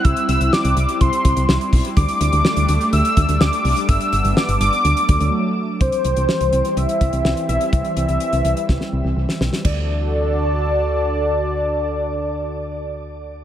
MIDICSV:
0, 0, Header, 1, 5, 480
1, 0, Start_track
1, 0, Tempo, 480000
1, 48, Time_signature, 4, 2, 24, 8
1, 13442, End_track
2, 0, Start_track
2, 0, Title_t, "Analog synth lead"
2, 0, Program_c, 0, 81
2, 44, Note_on_c, 0, 88, 114
2, 279, Note_off_c, 0, 88, 0
2, 285, Note_on_c, 0, 88, 105
2, 526, Note_on_c, 0, 86, 101
2, 541, Note_off_c, 0, 88, 0
2, 1007, Note_on_c, 0, 84, 89
2, 1022, Note_off_c, 0, 86, 0
2, 1727, Note_off_c, 0, 84, 0
2, 1966, Note_on_c, 0, 86, 114
2, 2887, Note_off_c, 0, 86, 0
2, 2928, Note_on_c, 0, 88, 119
2, 3408, Note_on_c, 0, 86, 107
2, 3423, Note_off_c, 0, 88, 0
2, 3887, Note_on_c, 0, 88, 117
2, 3902, Note_off_c, 0, 86, 0
2, 4369, Note_on_c, 0, 86, 103
2, 4384, Note_off_c, 0, 88, 0
2, 4602, Note_off_c, 0, 86, 0
2, 4608, Note_on_c, 0, 86, 100
2, 5528, Note_off_c, 0, 86, 0
2, 5808, Note_on_c, 0, 72, 103
2, 6769, Note_on_c, 0, 76, 115
2, 6784, Note_off_c, 0, 72, 0
2, 7483, Note_off_c, 0, 76, 0
2, 7489, Note_on_c, 0, 76, 103
2, 7712, Note_off_c, 0, 76, 0
2, 7729, Note_on_c, 0, 76, 113
2, 9129, Note_off_c, 0, 76, 0
2, 9649, Note_on_c, 0, 74, 98
2, 13442, Note_off_c, 0, 74, 0
2, 13442, End_track
3, 0, Start_track
3, 0, Title_t, "Analog synth pad"
3, 0, Program_c, 1, 89
3, 0, Note_on_c, 1, 55, 85
3, 0, Note_on_c, 1, 60, 78
3, 0, Note_on_c, 1, 64, 95
3, 1928, Note_off_c, 1, 55, 0
3, 1928, Note_off_c, 1, 64, 0
3, 1929, Note_off_c, 1, 60, 0
3, 1970, Note_on_c, 1, 55, 85
3, 1970, Note_on_c, 1, 57, 77
3, 1970, Note_on_c, 1, 62, 94
3, 3869, Note_off_c, 1, 57, 0
3, 3888, Note_on_c, 1, 59, 73
3, 4820, Note_off_c, 1, 55, 0
3, 4838, Note_off_c, 1, 59, 0
3, 4847, Note_on_c, 1, 57, 75
3, 4848, Note_on_c, 1, 54, 79
3, 5770, Note_off_c, 1, 62, 0
3, 5798, Note_off_c, 1, 54, 0
3, 5798, Note_off_c, 1, 57, 0
3, 5805, Note_on_c, 1, 52, 81
3, 5805, Note_on_c, 1, 55, 74
3, 5806, Note_on_c, 1, 60, 90
3, 9608, Note_off_c, 1, 52, 0
3, 9608, Note_off_c, 1, 55, 0
3, 9609, Note_off_c, 1, 60, 0
3, 9647, Note_on_c, 1, 62, 71
3, 9647, Note_on_c, 1, 66, 74
3, 9647, Note_on_c, 1, 69, 76
3, 9647, Note_on_c, 1, 81, 88
3, 9648, Note_on_c, 1, 50, 80
3, 13442, Note_off_c, 1, 50, 0
3, 13442, Note_off_c, 1, 62, 0
3, 13442, Note_off_c, 1, 66, 0
3, 13442, Note_off_c, 1, 69, 0
3, 13442, Note_off_c, 1, 81, 0
3, 13442, End_track
4, 0, Start_track
4, 0, Title_t, "FM bass"
4, 0, Program_c, 2, 39
4, 47, Note_on_c, 2, 36, 106
4, 138, Note_off_c, 2, 36, 0
4, 287, Note_on_c, 2, 36, 99
4, 378, Note_off_c, 2, 36, 0
4, 408, Note_on_c, 2, 36, 91
4, 498, Note_off_c, 2, 36, 0
4, 648, Note_on_c, 2, 36, 107
4, 738, Note_off_c, 2, 36, 0
4, 768, Note_on_c, 2, 36, 103
4, 859, Note_off_c, 2, 36, 0
4, 1010, Note_on_c, 2, 36, 99
4, 1100, Note_off_c, 2, 36, 0
4, 1249, Note_on_c, 2, 36, 110
4, 1339, Note_off_c, 2, 36, 0
4, 1370, Note_on_c, 2, 36, 101
4, 1460, Note_off_c, 2, 36, 0
4, 1488, Note_on_c, 2, 36, 92
4, 1579, Note_off_c, 2, 36, 0
4, 1727, Note_on_c, 2, 35, 93
4, 1818, Note_off_c, 2, 35, 0
4, 1968, Note_on_c, 2, 38, 115
4, 2058, Note_off_c, 2, 38, 0
4, 2208, Note_on_c, 2, 38, 105
4, 2298, Note_off_c, 2, 38, 0
4, 2329, Note_on_c, 2, 38, 104
4, 2419, Note_off_c, 2, 38, 0
4, 2568, Note_on_c, 2, 38, 97
4, 2659, Note_off_c, 2, 38, 0
4, 2688, Note_on_c, 2, 38, 108
4, 2779, Note_off_c, 2, 38, 0
4, 2929, Note_on_c, 2, 38, 111
4, 3019, Note_off_c, 2, 38, 0
4, 3169, Note_on_c, 2, 38, 112
4, 3259, Note_off_c, 2, 38, 0
4, 3289, Note_on_c, 2, 38, 102
4, 3379, Note_off_c, 2, 38, 0
4, 3408, Note_on_c, 2, 38, 100
4, 3498, Note_off_c, 2, 38, 0
4, 3649, Note_on_c, 2, 36, 96
4, 3739, Note_off_c, 2, 36, 0
4, 3887, Note_on_c, 2, 31, 115
4, 3978, Note_off_c, 2, 31, 0
4, 4128, Note_on_c, 2, 31, 98
4, 4218, Note_off_c, 2, 31, 0
4, 4247, Note_on_c, 2, 31, 107
4, 4338, Note_off_c, 2, 31, 0
4, 4486, Note_on_c, 2, 31, 103
4, 4578, Note_off_c, 2, 31, 0
4, 4606, Note_on_c, 2, 31, 101
4, 4698, Note_off_c, 2, 31, 0
4, 4847, Note_on_c, 2, 38, 101
4, 4938, Note_off_c, 2, 38, 0
4, 5088, Note_on_c, 2, 38, 98
4, 5179, Note_off_c, 2, 38, 0
4, 5208, Note_on_c, 2, 38, 101
4, 5299, Note_off_c, 2, 38, 0
4, 5807, Note_on_c, 2, 36, 110
4, 5898, Note_off_c, 2, 36, 0
4, 6049, Note_on_c, 2, 36, 102
4, 6139, Note_off_c, 2, 36, 0
4, 6170, Note_on_c, 2, 36, 106
4, 6260, Note_off_c, 2, 36, 0
4, 6409, Note_on_c, 2, 36, 98
4, 6499, Note_off_c, 2, 36, 0
4, 6529, Note_on_c, 2, 36, 100
4, 6619, Note_off_c, 2, 36, 0
4, 6770, Note_on_c, 2, 36, 103
4, 6860, Note_off_c, 2, 36, 0
4, 7010, Note_on_c, 2, 36, 105
4, 7100, Note_off_c, 2, 36, 0
4, 7130, Note_on_c, 2, 36, 96
4, 7220, Note_off_c, 2, 36, 0
4, 7249, Note_on_c, 2, 36, 91
4, 7339, Note_off_c, 2, 36, 0
4, 7489, Note_on_c, 2, 35, 94
4, 7579, Note_off_c, 2, 35, 0
4, 7727, Note_on_c, 2, 36, 104
4, 7818, Note_off_c, 2, 36, 0
4, 7969, Note_on_c, 2, 36, 104
4, 8059, Note_off_c, 2, 36, 0
4, 8089, Note_on_c, 2, 36, 96
4, 8179, Note_off_c, 2, 36, 0
4, 8328, Note_on_c, 2, 36, 105
4, 8419, Note_off_c, 2, 36, 0
4, 8447, Note_on_c, 2, 36, 101
4, 8538, Note_off_c, 2, 36, 0
4, 8690, Note_on_c, 2, 36, 99
4, 8780, Note_off_c, 2, 36, 0
4, 8929, Note_on_c, 2, 36, 93
4, 9019, Note_off_c, 2, 36, 0
4, 9047, Note_on_c, 2, 36, 96
4, 9138, Note_off_c, 2, 36, 0
4, 9167, Note_on_c, 2, 36, 95
4, 9258, Note_off_c, 2, 36, 0
4, 9408, Note_on_c, 2, 35, 86
4, 9499, Note_off_c, 2, 35, 0
4, 9647, Note_on_c, 2, 38, 99
4, 13442, Note_off_c, 2, 38, 0
4, 13442, End_track
5, 0, Start_track
5, 0, Title_t, "Drums"
5, 47, Note_on_c, 9, 36, 113
5, 48, Note_on_c, 9, 42, 82
5, 147, Note_off_c, 9, 36, 0
5, 148, Note_off_c, 9, 42, 0
5, 166, Note_on_c, 9, 42, 51
5, 266, Note_off_c, 9, 42, 0
5, 287, Note_on_c, 9, 42, 83
5, 387, Note_off_c, 9, 42, 0
5, 407, Note_on_c, 9, 42, 51
5, 507, Note_off_c, 9, 42, 0
5, 528, Note_on_c, 9, 38, 102
5, 628, Note_off_c, 9, 38, 0
5, 646, Note_on_c, 9, 42, 59
5, 746, Note_off_c, 9, 42, 0
5, 767, Note_on_c, 9, 42, 83
5, 867, Note_off_c, 9, 42, 0
5, 886, Note_on_c, 9, 42, 50
5, 986, Note_off_c, 9, 42, 0
5, 1007, Note_on_c, 9, 42, 79
5, 1009, Note_on_c, 9, 36, 94
5, 1107, Note_off_c, 9, 42, 0
5, 1109, Note_off_c, 9, 36, 0
5, 1128, Note_on_c, 9, 42, 53
5, 1228, Note_off_c, 9, 42, 0
5, 1248, Note_on_c, 9, 42, 80
5, 1249, Note_on_c, 9, 36, 93
5, 1348, Note_off_c, 9, 42, 0
5, 1349, Note_off_c, 9, 36, 0
5, 1366, Note_on_c, 9, 42, 53
5, 1466, Note_off_c, 9, 42, 0
5, 1488, Note_on_c, 9, 38, 115
5, 1588, Note_off_c, 9, 38, 0
5, 1610, Note_on_c, 9, 42, 49
5, 1710, Note_off_c, 9, 42, 0
5, 1727, Note_on_c, 9, 36, 90
5, 1729, Note_on_c, 9, 46, 78
5, 1827, Note_off_c, 9, 36, 0
5, 1829, Note_off_c, 9, 46, 0
5, 1847, Note_on_c, 9, 42, 58
5, 1947, Note_off_c, 9, 42, 0
5, 1966, Note_on_c, 9, 42, 80
5, 1967, Note_on_c, 9, 36, 114
5, 2066, Note_off_c, 9, 42, 0
5, 2068, Note_off_c, 9, 36, 0
5, 2085, Note_on_c, 9, 42, 51
5, 2185, Note_off_c, 9, 42, 0
5, 2207, Note_on_c, 9, 42, 85
5, 2307, Note_off_c, 9, 42, 0
5, 2325, Note_on_c, 9, 42, 49
5, 2425, Note_off_c, 9, 42, 0
5, 2447, Note_on_c, 9, 38, 103
5, 2547, Note_off_c, 9, 38, 0
5, 2565, Note_on_c, 9, 42, 58
5, 2665, Note_off_c, 9, 42, 0
5, 2685, Note_on_c, 9, 42, 86
5, 2785, Note_off_c, 9, 42, 0
5, 2807, Note_on_c, 9, 42, 51
5, 2907, Note_off_c, 9, 42, 0
5, 2928, Note_on_c, 9, 42, 80
5, 3028, Note_off_c, 9, 42, 0
5, 3049, Note_on_c, 9, 42, 54
5, 3149, Note_off_c, 9, 42, 0
5, 3168, Note_on_c, 9, 42, 80
5, 3169, Note_on_c, 9, 36, 93
5, 3268, Note_off_c, 9, 42, 0
5, 3269, Note_off_c, 9, 36, 0
5, 3286, Note_on_c, 9, 42, 51
5, 3386, Note_off_c, 9, 42, 0
5, 3407, Note_on_c, 9, 38, 116
5, 3507, Note_off_c, 9, 38, 0
5, 3528, Note_on_c, 9, 42, 50
5, 3628, Note_off_c, 9, 42, 0
5, 3649, Note_on_c, 9, 46, 77
5, 3749, Note_off_c, 9, 46, 0
5, 3765, Note_on_c, 9, 42, 60
5, 3865, Note_off_c, 9, 42, 0
5, 3886, Note_on_c, 9, 42, 83
5, 3887, Note_on_c, 9, 36, 117
5, 3986, Note_off_c, 9, 42, 0
5, 3987, Note_off_c, 9, 36, 0
5, 4004, Note_on_c, 9, 42, 49
5, 4104, Note_off_c, 9, 42, 0
5, 4125, Note_on_c, 9, 42, 82
5, 4225, Note_off_c, 9, 42, 0
5, 4246, Note_on_c, 9, 42, 51
5, 4346, Note_off_c, 9, 42, 0
5, 4368, Note_on_c, 9, 38, 105
5, 4468, Note_off_c, 9, 38, 0
5, 4486, Note_on_c, 9, 42, 57
5, 4586, Note_off_c, 9, 42, 0
5, 4607, Note_on_c, 9, 42, 84
5, 4707, Note_off_c, 9, 42, 0
5, 4727, Note_on_c, 9, 42, 50
5, 4827, Note_off_c, 9, 42, 0
5, 4847, Note_on_c, 9, 42, 79
5, 4947, Note_off_c, 9, 42, 0
5, 4968, Note_on_c, 9, 42, 53
5, 5068, Note_off_c, 9, 42, 0
5, 5086, Note_on_c, 9, 42, 80
5, 5088, Note_on_c, 9, 36, 98
5, 5186, Note_off_c, 9, 42, 0
5, 5188, Note_off_c, 9, 36, 0
5, 5204, Note_on_c, 9, 42, 52
5, 5304, Note_off_c, 9, 42, 0
5, 5806, Note_on_c, 9, 42, 73
5, 5807, Note_on_c, 9, 36, 108
5, 5906, Note_off_c, 9, 42, 0
5, 5907, Note_off_c, 9, 36, 0
5, 5924, Note_on_c, 9, 42, 46
5, 6024, Note_off_c, 9, 42, 0
5, 6045, Note_on_c, 9, 42, 75
5, 6145, Note_off_c, 9, 42, 0
5, 6165, Note_on_c, 9, 42, 45
5, 6265, Note_off_c, 9, 42, 0
5, 6287, Note_on_c, 9, 38, 92
5, 6387, Note_off_c, 9, 38, 0
5, 6405, Note_on_c, 9, 42, 53
5, 6505, Note_off_c, 9, 42, 0
5, 6526, Note_on_c, 9, 42, 74
5, 6626, Note_off_c, 9, 42, 0
5, 6647, Note_on_c, 9, 42, 46
5, 6747, Note_off_c, 9, 42, 0
5, 6769, Note_on_c, 9, 42, 73
5, 6869, Note_off_c, 9, 42, 0
5, 6890, Note_on_c, 9, 42, 49
5, 6990, Note_off_c, 9, 42, 0
5, 7010, Note_on_c, 9, 36, 92
5, 7010, Note_on_c, 9, 42, 71
5, 7110, Note_off_c, 9, 36, 0
5, 7110, Note_off_c, 9, 42, 0
5, 7127, Note_on_c, 9, 42, 48
5, 7227, Note_off_c, 9, 42, 0
5, 7249, Note_on_c, 9, 38, 107
5, 7349, Note_off_c, 9, 38, 0
5, 7371, Note_on_c, 9, 42, 46
5, 7471, Note_off_c, 9, 42, 0
5, 7490, Note_on_c, 9, 42, 68
5, 7590, Note_off_c, 9, 42, 0
5, 7607, Note_on_c, 9, 42, 53
5, 7707, Note_off_c, 9, 42, 0
5, 7727, Note_on_c, 9, 42, 74
5, 7728, Note_on_c, 9, 36, 105
5, 7827, Note_off_c, 9, 42, 0
5, 7828, Note_off_c, 9, 36, 0
5, 7845, Note_on_c, 9, 42, 44
5, 7945, Note_off_c, 9, 42, 0
5, 7966, Note_on_c, 9, 42, 75
5, 8066, Note_off_c, 9, 42, 0
5, 8085, Note_on_c, 9, 42, 44
5, 8185, Note_off_c, 9, 42, 0
5, 8204, Note_on_c, 9, 42, 69
5, 8304, Note_off_c, 9, 42, 0
5, 8326, Note_on_c, 9, 42, 54
5, 8426, Note_off_c, 9, 42, 0
5, 8447, Note_on_c, 9, 42, 74
5, 8547, Note_off_c, 9, 42, 0
5, 8568, Note_on_c, 9, 42, 46
5, 8668, Note_off_c, 9, 42, 0
5, 8689, Note_on_c, 9, 38, 50
5, 8690, Note_on_c, 9, 36, 85
5, 8789, Note_off_c, 9, 38, 0
5, 8790, Note_off_c, 9, 36, 0
5, 8808, Note_on_c, 9, 38, 51
5, 8908, Note_off_c, 9, 38, 0
5, 9288, Note_on_c, 9, 38, 70
5, 9388, Note_off_c, 9, 38, 0
5, 9408, Note_on_c, 9, 38, 84
5, 9508, Note_off_c, 9, 38, 0
5, 9528, Note_on_c, 9, 38, 79
5, 9628, Note_off_c, 9, 38, 0
5, 9647, Note_on_c, 9, 49, 78
5, 9648, Note_on_c, 9, 36, 89
5, 9747, Note_off_c, 9, 49, 0
5, 9748, Note_off_c, 9, 36, 0
5, 13442, End_track
0, 0, End_of_file